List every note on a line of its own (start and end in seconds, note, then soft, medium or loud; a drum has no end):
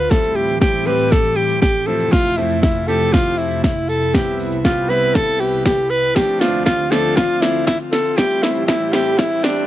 0.00 0.12 B4 loud
0.00 impact medium
0.10 1.86 A2 medium
0.10 1.86 E3 medium
0.10 0.52 G3 medium
0.10 0.52 A3 medium
0.10 1.86 C4 medium
0.10 0.52 C4 medium
0.10 0.52 E4 medium
0.10 1.86 G4 medium
0.10 0.37 A4 loud
0.10 kick loud
0.10 snare medium
0.10 closed hi-hat medium
0.10 shaker medium
0.24 closed hi-hat medium
0.24 shaker medium
0.36 0.60 G4 medium
0.36 shaker medium
0.49 closed hi-hat medium
0.49 shaker medium
0.61 0.82 G3 medium
0.61 0.82 A3 medium
0.61 0.82 C4 medium
0.61 0.82 E4 medium
0.61 0.88 G4 medium
0.61 kick loud
0.61 snare medium
0.61 closed hi-hat medium
0.61 shaker medium
0.74 closed hi-hat medium
0.74 shaker medium
0.86 1.69 G3 medium
0.86 1.69 A3 medium
0.86 1.69 C4 medium
0.86 1.69 G4 medium
0.86 1.13 B4 loud
0.86 shaker medium
0.99 closed hi-hat medium
0.99 shaker medium
1.11 1.38 A4 loud
1.11 kick loud
1.11 snare medium
1.11 closed hi-hat medium
1.11 shaker medium
1.25 closed hi-hat medium
1.25 shaker medium
1.36 1.61 G4 medium
1.36 shaker medium
1.50 closed hi-hat medium
1.50 shaker medium
1.62 1.88 G4 medium
1.62 kick loud
1.62 snare medium
1.62 closed hi-hat loud
1.62 shaker medium
1.75 closed hi-hat medium
1.75 shaker medium
1.86 4.12 F2 medium
1.86 6.12 C3 medium
1.86 2.29 F3 medium
1.86 2.29 A3 medium
1.86 4.12 A3 medium
1.86 2.29 C4 medium
1.86 6.12 E4 medium
1.86 2.29 E4 medium
1.86 2.13 A4 medium
1.86 shaker soft
2.00 closed hi-hat medium
2.00 shaker medium
2.12 2.38 F4 loud
2.12 kick loud
2.12 snare medium
2.12 closed hi-hat medium
2.12 shaker medium
2.26 closed hi-hat medium
2.26 shaker medium
2.37 2.79 F3 medium
2.37 2.79 A3 medium
2.37 2.79 C4 medium
2.37 2.61 E4 medium
2.37 2.79 E4 medium
2.37 open hi-hat medium
2.37 shaker medium
2.51 closed hi-hat medium
2.51 shaker medium
2.62 2.89 E4 medium
2.62 kick loud
2.62 snare medium
2.62 closed hi-hat medium
2.62 shaker medium
2.76 closed hi-hat medium
2.76 shaker medium
2.87 3.70 F3 medium
2.87 3.71 A3 medium
2.87 3.71 C4 medium
2.87 3.71 G4 medium
2.87 3.14 A4 medium
2.87 open hi-hat medium
2.87 shaker medium
3.01 closed hi-hat soft
3.01 shaker medium
3.13 3.40 F4 medium
3.13 kick loud
3.13 snare medium
3.13 closed hi-hat medium
3.13 shaker medium
3.26 closed hi-hat medium
3.26 shaker medium
3.38 3.63 E4 medium
3.38 open hi-hat medium
3.38 shaker medium
3.51 closed hi-hat medium
3.51 shaker medium
3.64 3.90 E4 medium
3.64 kick loud
3.64 snare medium
3.64 closed hi-hat medium
3.64 shaker medium
3.76 closed hi-hat medium
3.76 shaker medium
3.89 4.16 A4 medium
3.89 open hi-hat medium
3.89 shaker soft
4.02 closed hi-hat medium
4.02 shaker medium
4.14 6.14 C2 medium
4.14 4.55 G3 medium
4.14 4.55 B3 medium
4.14 4.56 C4 medium
4.14 4.56 E4 medium
4.14 4.40 G4 medium
4.14 6.14 B4 medium
4.14 kick loud
4.14 snare medium
4.14 closed hi-hat medium
4.14 shaker medium
4.27 closed hi-hat medium
4.27 shaker medium
4.40 open hi-hat medium
4.40 shaker medium
4.52 closed hi-hat medium
4.52 shaker medium
4.64 4.85 G3 medium
4.64 4.85 B3 medium
4.64 4.85 C4 medium
4.64 4.91 F4 medium
4.64 4.85 G4 medium
4.64 kick loud
4.64 snare medium
4.64 closed hi-hat medium
4.64 shaker medium
4.77 closed hi-hat medium
4.77 shaker medium
4.90 5.72 G3 medium
4.90 5.72 B3 medium
4.90 5.72 C4 medium
4.90 5.72 E4 medium
4.90 5.17 B4 loud
4.90 open hi-hat medium
4.90 shaker medium
5.03 closed hi-hat medium
5.03 shaker medium
5.15 5.41 A4 loud
5.15 kick loud
5.15 snare medium
5.15 closed hi-hat medium
5.15 shaker medium
5.28 closed hi-hat medium
5.28 shaker medium
5.40 5.65 G4 loud
5.40 open hi-hat medium
5.40 shaker medium
5.53 closed hi-hat medium
5.53 shaker medium
5.65 5.92 G4 loud
5.65 kick loud
5.65 snare medium
5.65 closed hi-hat loud
5.65 shaker loud
5.78 closed hi-hat medium
5.78 shaker medium
5.90 6.17 B4 loud
5.90 open hi-hat medium
5.90 shaker medium
6.03 closed hi-hat medium
6.03 shaker medium
6.16 8.16 D2 medium
6.16 8.16 D3 medium
6.16 6.37 F3 medium
6.16 6.37 A3 medium
6.16 9.67 C4 medium
6.16 6.37 C4 medium
6.16 6.37 D4 medium
6.16 8.16 F4 medium
6.16 6.42 G4 loud
6.16 kick loud
6.16 snare medium
6.16 closed hi-hat medium
6.16 riser medium
6.16 shaker medium
6.29 closed hi-hat medium
6.29 shaker medium
6.40 6.82 F3 medium
6.40 6.82 A3 medium
6.40 6.82 C4 medium
6.40 6.83 D4 medium
6.40 6.65 F4 medium
6.40 snare medium
6.40 open hi-hat medium
6.40 shaker medium
6.54 closed hi-hat medium
6.54 shaker medium
6.65 6.93 F4 medium
6.65 kick loud
6.65 snare medium
6.65 clap medium
6.65 closed hi-hat medium
6.65 shaker medium
6.79 closed hi-hat medium
6.79 shaker medium
6.91 7.74 F3 medium
6.91 7.74 A3 medium
6.91 7.74 C4 medium
6.91 7.74 D4 medium
6.91 7.18 A4 loud
6.91 snare medium
6.91 open hi-hat medium
6.91 shaker medium
7.05 closed hi-hat medium
7.05 shaker medium
7.16 7.43 F4 loud
7.16 kick loud
7.16 snare medium
7.16 closed hi-hat medium
7.16 shaker medium
7.30 closed hi-hat medium
7.30 shaker medium
7.41 7.66 E4 medium
7.41 snare loud
7.41 open hi-hat medium
7.41 shaker medium
7.55 closed hi-hat medium
7.55 shaker medium
7.67 7.78 E4 medium
7.67 kick loud
7.67 snare loud
7.67 clap medium
7.67 closed hi-hat loud
7.67 shaker loud
7.80 closed hi-hat medium
7.80 shaker medium
7.92 8.18 A4 loud
7.92 snare medium
7.92 open hi-hat medium
7.92 shaker soft
8.05 closed hi-hat medium
8.05 shaker medium
8.17 9.67 A2 medium
8.17 9.67 E3 medium
8.17 8.59 G3 medium
8.17 8.59 A3 medium
8.17 8.59 C4 medium
8.17 8.59 E4 medium
8.17 8.44 G4 loud
8.17 9.67 G4 medium
8.17 kick loud
8.17 snare medium
8.17 closed hi-hat medium
8.17 shaker medium
8.31 closed hi-hat medium
8.31 shaker medium
8.42 8.67 E4 medium
8.42 snare medium
8.42 open hi-hat medium
8.42 shaker medium
8.56 closed hi-hat medium
8.56 shaker medium
8.67 8.89 G3 medium
8.67 8.89 A3 medium
8.67 8.89 C4 medium
8.67 8.94 E4 medium
8.67 8.89 E4 medium
8.67 kick loud
8.67 snare medium
8.67 clap medium
8.67 closed hi-hat medium
8.67 shaker medium
8.81 closed hi-hat medium
8.81 shaker medium
8.93 9.67 G3 medium
8.93 9.67 A3 medium
8.93 9.67 C4 medium
8.93 9.67 E4 medium
8.93 9.20 G4 medium
8.93 snare loud
8.93 open hi-hat medium
8.93 shaker medium
9.06 closed hi-hat medium
9.06 shaker medium
9.18 9.45 E4 loud
9.18 kick loud
9.18 snare loud
9.18 closed hi-hat medium
9.18 shaker medium
9.31 closed hi-hat medium
9.31 shaker medium
9.43 9.67 D4 medium
9.43 snare loud
9.43 open hi-hat medium
9.43 shaker medium
9.56 closed hi-hat medium
9.56 shaker medium